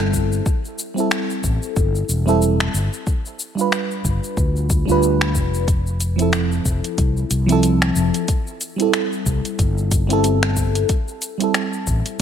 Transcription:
Already playing: G1 G3 C4 E4 A4
0.00 finger snap, cabasa
0.13 kick, cabasa
0.32 cabasa
0.46 kick, cabasa
0.65 cabasa
0.79 cabasa
0.94 G3 C4 E4, cabasa
1.00 A4
1.11 finger snap, cabasa
1.30 cabasa
1.44 A1, kick, cabasa
1.63 cabasa
1.76 G1, kick, cabasa
1.95 cabasa
2.09 E1, cabasa
2.26 G3 C4 E4 A4, cabasa
2.42 cabasa
2.60 finger snap, cabasa
2.74 G1, cabasa
2.93 cabasa
3.07 kick, cabasa
3.26 cabasa
3.40 cabasa
3.55 G3 D4 F4, cabasa
3.61 B4
3.72 finger snap, cabasa
3.91 cabasa
4.05 G1, kick, cabasa
4.24 cabasa
4.37 D2, kick, cabasa
4.56 cabasa
4.70 kick, cabasa
4.85 D2 G3 D4 F4, cabasa
4.92 B4
5.03 cabasa
5.21 finger snap, cabasa
5.35 F1, kick, cabasa
5.54 cabasa
5.68 kick, closed hi-hat, cabasa
5.87 cabasa
6.00 closed hi-hat, cabasa
6.16 F3 C4 E4, closed hi-hat, cabasa
6.22 A4
6.33 finger snap, closed hi-hat, cabasa
6.52 cabasa
6.65 F1, kick, cabasa
6.84 closed hi-hat, cabasa
6.98 C2, kick, closed hi-hat, cabasa
7.17 cabasa
7.31 C2, closed hi-hat, cabasa
7.46 F3 C4 E4, closed hi-hat, cabasa
7.52 A4
7.63 closed hi-hat, cabasa
7.82 finger snap, cabasa
7.96 F1, cabasa
8.14 closed hi-hat, cabasa
8.28 kick, closed hi-hat, cabasa
8.47 cabasa
8.61 closed hi-hat, cabasa
8.76 G3 C4, closed hi-hat, cabasa
8.80 E4 A4
8.93 finger snap, closed hi-hat, cabasa
9.12 cabasa
9.26 C2, kick, cabasa
9.45 closed hi-hat, cabasa
9.59 G1, kick, closed hi-hat, cabasa
9.78 cabasa
9.91 kick, closed hi-hat, cabasa
10.07 G3 C4 E4, closed hi-hat, cabasa
10.13 A4
10.24 closed hi-hat, cabasa
10.43 finger snap, cabasa
10.56 kick, cabasa
10.75 closed hi-hat, cabasa
10.89 kick, closed hi-hat, cabasa
11.08 cabasa
11.22 closed hi-hat, cabasa
11.38 G3 C4 E4, closed hi-hat, cabasa
11.44 A4
11.54 finger snap, closed hi-hat, cabasa
11.73 cabasa
11.87 A1, kick, cabasa
12.06 closed hi-hat, cabasa

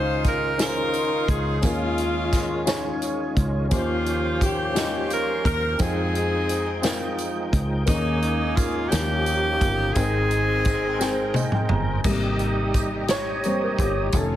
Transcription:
Already playing: C#2 C#3 D#3 C#4 D#4 F4 G#4 C5
0.24 A#4, kick, closed hi-hat, tambourine
0.57 C#4 D#4 F4 G#4 A#4 C5, snare, closed hi-hat, tambourine
0.62 D#4 F4
0.93 closed hi-hat, tambourine
1.28 C#2 G#4, kick, closed hi-hat
1.61 D#2 D#3 G#3 C#4 D#4 F4 G#4 A#4, kick, closed hi-hat, tambourine
1.66 F4
1.98 closed hi-hat
2.33 kick, snare, closed hi-hat, tambourine
2.66 C#4 D#4 F4 G#4 C#5, snare, closed hi-hat, tambourine
3.02 closed hi-hat, tambourine
3.36 C#2, kick, closed hi-hat
3.69 D#2 D#3 F3 C#4 D#4 F4 G4 C5, kick, closed hi-hat, tambourine
3.73 A#3 C#4 F4
3.78 G4
4.06 closed hi-hat
4.41 A#3 C#4 G4, kick, closed hi-hat, tambourine
4.73 C#4 D#4 F4 G4 D#5, snare, closed hi-hat, tambourine
5.10 A#4, closed hi-hat, tambourine
5.45 D#2 A#4, kick, closed hi-hat
5.78 F2 F3 G#3 C4 D#4 F4 F#4 G#4 G5, kick, closed hi-hat, tambourine
5.86 G5
6.15 closed hi-hat
6.49 closed hi-hat, tambourine
6.82 C4 D#4 F4 A#4 G5, snare, closed hi-hat, tambourine
7.18 closed hi-hat, tambourine
7.53 C#2, kick, closed hi-hat
7.86 D#2 D#3 G#3 A#3 C#4 D#4 G4 G#4 A#4, kick, closed hi-hat, tambourine
7.95 G#4
8.22 closed hi-hat
8.56 F4, kick, closed hi-hat, tambourine
8.89 D#2 D#3 F3 A#3 C#4 D#4 F4 G4, snare, closed hi-hat, tambourine
8.94 A#4
9.26 closed hi-hat, tambourine
9.61 G1, kick, closed hi-hat
9.93 G#1 G#2 G#3 C4 D#4 G#4 A#4 G5, kick, closed hi-hat, tambourine
9.97 C4 D#4 G#4 A#4
10.31 closed hi-hat
10.65 kick, closed hi-hat, tambourine
10.99 C4 D#4 G#4 A#4 G5, snare, tambourine
11.09 C5
11.34 D#5, high tom, tambourine
11.52 G5, mid tom
11.69 G1 A#5, mid tom
12.04 G#1 C3 G3 A#3 D#4 G4 D#5, kick, crash, tambourine
12.39 closed hi-hat
12.74 kick, closed hi-hat, tambourine
13.08 C#5, snare, closed hi-hat, tambourine
13.43 G3 A#3 C4 C5, closed hi-hat, tambourine
13.64 A#4
13.79 G1 G4, kick, closed hi-hat
14.12 F1 C#3 D#3 G#3 A3 C#4 D#4 F4 A4 C#5, kick, closed hi-hat, tambourine
14.20 A3

